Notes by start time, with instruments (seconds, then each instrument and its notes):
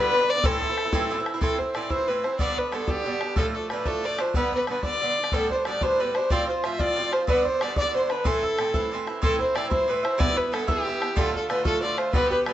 Already playing: bouzouki G2 D3 B3 D4, flute B4, fiddle B4
0.12 bouzouki G2 D3 B3 D4
0.20 bouzouki D3 B3 D4
0.30 fiddle D5
0.35 bouzouki D3 B3 D4
0.44 bouzouki A2 E3 C4 E4, flute A4, fiddle A4, bodhran
0.61 bouzouki A2 E3 C4 E4, bodhran
0.69 bouzouki E3 C4 E4
0.77 bodhran
0.85 bouzouki E3 C4 E4
0.93 bouzouki A2 E3 C4 E4, bodhran
1.11 bouzouki A2 E3 C4 E4
1.18 bouzouki E3 C4 E4
1.26 bodhran
1.34 bouzouki E3 C4 E4
1.41 bouzouki A2 E3 C4 E4, fiddle A4, bodhran
1.58 bouzouki E3 E4, fiddle C5, bodhran
1.74 bouzouki A2 E3 C4 E4, fiddle D5, bodhran
1.90 bouzouki A2 E3 C4 E4, fiddle C5, bodhran
2.08 bouzouki A2 E3 C4 E4, fiddle B4
2.23 bouzouki E3 C4 E4, fiddle C5, bodhran
2.39 bouzouki G2 D3 B3 D4, fiddle D5, bodhran
2.57 bouzouki D3 B3 D4, fiddle B4, bodhran
2.72 bouzouki G2 D3 B3 D4, fiddle A4, bodhran
2.87 bouzouki G2 D3 B3 D4, fiddle G4, bodhran
3.05 bouzouki G2 D3 B3 D4
3.20 bouzouki D3 B3 D4, bodhran
3.36 bouzouki A2 F3 A3 D4, fiddle A4, bodhran
3.55 bouzouki F3 A3 D4, fiddle A4
3.70 bouzouki A2 F3 A3 D4, fiddle B4, bodhran
3.86 bouzouki A2 F3 A3 D4, fiddle A4, bodhran
4.03 bouzouki A2 F3 A3 D4, fiddle D5
4.18 bouzouki F3 A3 D4, fiddle C5, bodhran
4.34 bouzouki G2 D3 B3 D4, fiddle B4, bodhran
4.52 bouzouki D3 B3 D4, fiddle B4, bodhran
4.67 bouzouki G2 D3 B3 D4, fiddle B4, bodhran
4.83 bouzouki G2 D3 B3 D4, fiddle D5, bodhran
5.01 bouzouki G2 D3 B3 D4
5.17 bouzouki D3 B3 D4
5.24 bodhran
5.32 bouzouki A2 G3 B3 D4, flute A4, fiddle A4, bodhran
5.50 bouzouki G3 B3 D4, fiddle C5, flute C5, bodhran
5.65 bouzouki A2 G3 B3 D4, fiddle D5, flute D5, bodhran
5.81 bouzouki A2 G3 B3 D4, flute C5, fiddle C5, bodhran
5.99 bouzouki A2 G3 B3 D4, fiddle B4, flute B4
6.15 bouzouki G3 B3 D4, fiddle C5, flute C5, bodhran
6.30 bouzouki A2 F3 C4 F4, fiddle D5, flute D5, bodhran
6.49 bouzouki F3 F4, fiddle C5, flute C5
6.64 bouzouki A2 F3 C4 F4, flute E5, fiddle E5, bodhran
6.79 bouzouki A2 F3 C4 F4, flute D5, fiddle D5, bodhran
6.96 bouzouki A2 F3 C4 F4
7.12 bouzouki F3 C4 F4, flute C5, fiddle C5, bodhran
7.27 bouzouki G2 D3 B3 D4, flute B4, fiddle B4, bodhran
7.45 bouzouki D3 B3 D4, flute C5, fiddle C5, bodhran
7.59 bouzouki G2 D3 B3, flute D5, fiddle D5, bodhran
7.64 bouzouki D4
7.75 bouzouki G2 D3 B3 D4, flute D5, fiddle D5, bodhran
7.93 bouzouki G2 D3 B3 D4, flute C5, fiddle C5
8.09 bouzouki D3 B3 D4, fiddle B4, bodhran
8.19 flute B4
8.24 bouzouki A2 E3 C4 E4, flute A4, fiddle A4, bodhran
8.43 bouzouki E3 C4 E4, bodhran
8.58 bouzouki A2 E3 C4 E4, bodhran
8.74 bouzouki A2 E3 C4 E4, bodhran
8.92 bouzouki A2 E3 C4 E4
9.07 bouzouki E3 C4 E4, bodhran
9.22 bouzouki A2 E3 C4 E4, fiddle A4, bodhran
9.39 bouzouki E3 C4 E4, fiddle C5, bodhran
9.55 bouzouki A2 E3 C4 E4, fiddle D5, bodhran
9.70 bouzouki A2 E3 C4 E4, fiddle C5, bodhran
9.88 bouzouki A2 E3 C4 E4, fiddle B4
10.03 bouzouki E3 C4 E4, fiddle C5, bodhran
10.18 bouzouki G2 E3 B3 E4, fiddle D5, bodhran
10.36 bouzouki E3 B3 E4, fiddle B4, bodhran
10.52 bouzouki G2 E3 B3 E4, fiddle A4, bodhran
10.67 bouzouki G2 E3 B3 E4, fiddle G4, bodhran
10.85 bouzouki G2 E3 B3 E4
11.00 bouzouki E3 B3 E4, bodhran
11.16 bouzouki A2 D3 A3 F4, fiddle A4, bodhran
11.33 bouzouki D3 A3 F4, fiddle A4, bodhran
11.49 bouzouki A2 D3 A3 F4, fiddle B4, bodhran
11.65 bouzouki A2 D3 A3 F4, fiddle A4, bodhran
11.82 bouzouki A2 D3 A3 F4, fiddle D5
11.97 bouzouki D3 A3 F4, fiddle C5, bodhran
12.13 bouzouki G2 D3 B3 G4, fiddle B4, bodhran
12.30 bouzouki D3 B3 G4, fiddle B4, bodhran
12.46 bouzouki G2 D3 B3 G4, fiddle B4, bodhran